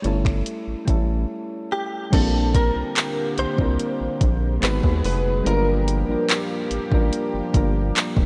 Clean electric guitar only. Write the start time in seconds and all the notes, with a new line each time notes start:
Already playing: C#5
1.72 G4
2.14 A4
2.56 A#4
3.39 C5
4.64 B4
5.06 B4
5.47 A#4